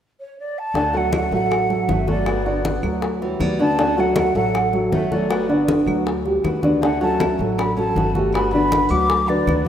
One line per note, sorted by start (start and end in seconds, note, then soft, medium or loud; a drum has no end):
0.19 0.36 C#5 medium
0.39 0.59 D5 medium
0.58 0.98 A5 loud
0.74 1.27 D2 medium
0.74 0.93 D3 medium
0.74 0.91 D3 medium
0.74 0.94 A3 medium
0.74 0.93 C#4 medium
0.74 0.91 D4 medium
0.74 0.92 F#4 medium
0.74 0.91 D5 medium
0.74 high bongo medium
0.74 high conga soft
0.93 1.25 F#3 medium
0.93 1.12 A3 medium
0.93 1.50 A3 soft
0.93 1.50 C#4 medium
0.93 1.51 F#4 medium
0.93 1.25 F#4 medium
0.93 1.25 A4 medium
0.93 1.14 F#5 medium
0.93 high conga soft
1.13 1.31 A3 medium
1.13 1.32 F#5 medium
1.13 high bongo medium
1.13 high conga medium
1.13 claves medium
1.31 1.84 A1 medium
1.31 1.63 F#3 medium
1.31 1.85 A3 medium
1.31 1.63 F#4 medium
1.31 1.63 A4 medium
1.31 1.92 F#5 medium
1.31 high bongo soft
1.31 high conga soft
1.51 muted steel-string acoustic guitar stroke medium
1.51 high bongo medium
1.51 high conga soft
1.51 claves medium
1.70 2.01 F#3 medium
1.70 2.01 F#4 medium
1.70 2.01 A4 medium
1.70 high bongo soft
1.70 high conga soft
1.88 2.77 G1 medium
1.88 2.07 D3 soft
1.88 2.08 A3 medium
1.88 2.08 A3 soft
1.88 2.07 C#4 soft
1.88 2.07 F#4 soft
1.88 2.08 E5 medium
1.88 high bongo soft
1.88 low bongo medium
1.88 high conga medium
2.07 2.61 F#3 medium
2.07 2.39 A3 medium
2.07 2.27 A3 soft
2.07 2.26 C#4 medium
2.07 2.26 F#4 medium
2.07 2.39 F#4 medium
2.07 2.39 A4 medium
2.07 2.62 D5 medium
2.07 high bongo soft
2.07 high conga medium
2.26 2.45 G3 medium
2.26 2.46 B3 medium
2.26 2.45 F#4 medium
2.26 high bongo medium
2.26 high conga soft
2.26 claves medium
2.46 2.77 D3 medium
2.46 3.02 B3 medium
2.46 2.77 D4 medium
2.46 3.03 F#4 medium
2.46 2.77 D5 medium
2.46 high conga soft
2.65 high bongo medium
2.65 high conga medium
2.83 3.36 D2 medium
2.83 3.15 F#3 medium
2.83 3.15 F#4 medium
2.83 high bongo soft
2.83 high conga soft
2.83 claves medium
3.02 muted steel-string acoustic guitar stroke medium
3.02 high bongo medium
3.02 high conga soft
3.22 3.41 E3 medium
3.22 3.53 G3 medium
3.22 3.53 F#4 medium
3.22 3.53 G4 medium
3.22 3.42 C#5 medium
3.22 high bongo soft
3.22 high conga soft
3.40 4.29 D2 medium
3.40 3.60 F#3 medium
3.40 3.59 G3 soft
3.40 3.59 B3 soft
3.40 3.58 F#4 medium
3.40 3.60 D5 medium
3.40 high bongo soft
3.40 low bongo medium
3.40 high conga medium
3.40 claves medium
3.59 3.75 D3 medium
3.59 3.79 B3 medium
3.59 3.98 C#4 medium
3.59 3.76 D4 medium
3.59 3.78 F#4 medium
3.59 3.75 D5 medium
3.59 4.01 A5 loud
3.59 high bongo soft
3.78 3.96 D3 medium
3.78 3.94 D3 medium
3.78 3.97 A3 medium
3.78 3.97 C#4 medium
3.78 3.95 D4 medium
3.78 3.96 F#4 medium
3.78 3.95 D5 medium
3.78 high bongo medium
3.78 high conga soft
3.97 4.29 F#3 medium
3.97 4.15 A3 medium
3.97 4.53 A3 medium
3.97 4.54 C#4 medium
3.97 4.54 F#4 medium
3.97 4.29 F#4 medium
3.97 4.29 A4 medium
3.97 4.17 F#5 medium
3.97 high conga soft
4.16 4.34 A3 medium
4.16 4.35 F#5 medium
4.16 high bongo medium
4.16 high conga loud
4.16 claves medium
4.35 4.88 A1 medium
4.35 4.67 F#3 medium
4.35 4.88 A3 medium
4.35 4.67 F#4 medium
4.35 4.67 A4 medium
4.35 4.89 F#5 loud
4.35 high bongo soft
4.35 high conga soft
4.54 muted steel-string acoustic guitar stroke medium
4.54 high bongo medium
4.54 high conga soft
4.54 claves medium
4.73 5.05 F#3 medium
4.73 5.05 F#4 medium
4.73 5.05 A4 medium
4.73 high bongo soft
4.73 high conga soft
4.92 5.81 G1 medium
4.92 5.11 D3 soft
4.92 5.12 A3 medium
4.92 5.11 A3 soft
4.92 5.11 C#4 soft
4.92 5.10 F#4 soft
4.92 5.14 E5 medium
4.92 high bongo soft
4.92 low bongo medium
4.92 high conga medium
5.11 5.69 F#3 medium
5.11 5.42 A3 medium
5.11 5.29 A3 medium
5.11 5.30 C#4 medium
5.11 5.30 F#4 medium
5.11 5.43 F#4 medium
5.11 5.43 A4 medium
5.11 5.69 D5 medium
5.11 high bongo soft
5.11 high conga medium
5.29 5.48 G3 medium
5.29 5.49 B3 medium
5.29 5.48 F#4 medium
5.29 high bongo medium
5.29 high conga soft
5.29 claves medium
5.49 5.80 D3 medium
5.49 6.05 B3 medium
5.49 5.81 D4 medium
5.49 6.06 F#4 medium
5.49 5.81 D5 medium
5.49 high conga soft
5.68 high bongo medium
5.68 high conga medium
5.86 6.40 D2 medium
5.86 6.18 F#3 medium
5.86 6.19 F#4 medium
5.86 high bongo soft
5.86 high conga soft
5.86 claves medium
6.05 muted steel-string acoustic guitar stroke medium
6.05 high bongo medium
6.05 high conga soft
6.25 6.57 G3 medium
6.25 6.57 F#4 medium
6.25 6.57 G4 medium
6.25 high bongo soft
6.25 high conga soft
6.43 7.33 D2 medium
6.43 6.62 G3 soft
6.43 6.63 B3 soft
6.43 6.61 F#4 soft
6.43 high bongo soft
6.43 low bongo medium
6.43 high conga medium
6.43 claves medium
6.63 6.79 D3 medium
6.63 6.82 B3 medium
6.63 6.79 D4 medium
6.63 6.81 F#4 medium
6.63 6.79 D5 medium
6.63 high bongo soft
6.63 high conga medium
6.81 7.00 D3 medium
6.81 6.98 D3 medium
6.81 7.00 A3 medium
6.81 7.01 C#4 medium
6.81 6.98 D4 medium
6.81 6.99 F#4 medium
6.81 6.98 D5 medium
6.81 7.00 F#5 medium
6.81 high bongo medium
6.81 high conga soft
7.00 7.33 F#3 medium
7.00 7.58 A3 medium
7.00 7.37 C#4 medium
7.00 7.58 C#4 medium
7.00 7.59 F#4 medium
7.00 7.33 F#4 medium
7.00 7.33 A4 medium
7.00 7.37 A5 medium
7.00 high conga soft
7.20 high bongo medium
7.20 high conga medium
7.20 claves medium
7.39 7.92 A1 medium
7.39 7.71 F#3 medium
7.39 7.71 F#4 medium
7.39 7.71 A4 medium
7.39 high bongo soft
7.39 high conga soft
7.58 7.76 D4 medium
7.58 7.76 B5 medium
7.58 muted steel-string acoustic guitar stroke medium
7.58 high bongo medium
7.58 high conga soft
7.58 claves medium
7.77 8.09 F#3 medium
7.77 8.12 C#4 medium
7.77 8.09 F#4 medium
7.77 8.09 A4 medium
7.77 8.13 A5 medium
7.77 high bongo soft
7.77 high conga soft
7.96 8.85 G1 medium
7.96 8.15 D3 soft
7.96 8.15 A3 soft
7.96 8.16 C#4 medium
7.96 8.14 F#4 medium
7.96 high bongo soft
7.96 low bongo medium
7.96 high conga medium
8.15 8.46 A3 medium
8.15 8.34 A3 soft
8.15 8.34 C#4 medium
8.15 8.46 F#4 medium
8.15 8.34 F#4 medium
8.15 8.47 G4 medium
8.15 high bongo soft
8.15 high conga medium
8.32 8.52 G3 medium
8.32 8.53 B3 medium
8.32 8.50 D4 medium
8.32 8.52 F#4 medium
8.32 8.51 B5 medium
8.32 high bongo medium
8.32 high conga soft
8.32 claves medium
8.51 8.85 D3 medium
8.51 8.89 D4 medium
8.51 8.85 D4 medium
8.51 9.10 F#4 medium
8.51 8.85 D5 medium
8.51 8.91 B5 loud
8.51 high conga soft
8.56 9.09 B3 medium
8.72 high bongo medium
8.72 high conga medium
8.89 9.43 D2 medium
8.89 9.22 F#3 medium
8.89 9.28 F#4 medium
8.89 9.22 F#4 medium
8.89 9.29 D6 loud
8.89 high bongo soft
8.89 high conga soft
8.89 claves medium
9.10 muted steel-string acoustic guitar stroke medium
9.10 high bongo medium
9.10 high conga soft
9.26 9.60 D3 medium
9.26 9.63 F#3 medium
9.26 9.60 F#4 medium
9.26 9.61 B4 medium
9.26 9.65 D5 medium
9.26 high bongo soft
9.26 high conga soft
9.47 9.68 D2 medium
9.47 9.66 G3 soft
9.47 9.66 B3 medium
9.47 9.65 F#4 medium
9.47 high bongo soft
9.47 low bongo medium
9.47 high conga medium
9.47 claves medium
9.65 9.68 F#3 medium